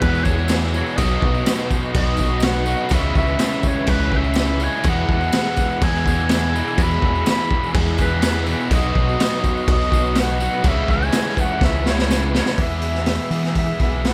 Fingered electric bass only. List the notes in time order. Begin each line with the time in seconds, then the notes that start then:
0.02 E2
0.98 B1
1.22 B1
1.94 B1
2.91 C#2
3.15 C#2
3.88 C#2
4.85 E2
5.09 E2
5.82 E2
6.78 E2
7.02 E2
7.74 E2
8.70 B1
8.95 B1
9.67 B1
10.64 C#2
10.88 C#2
11.61 C#2
12.58 E2
13.30 E3
13.79 B1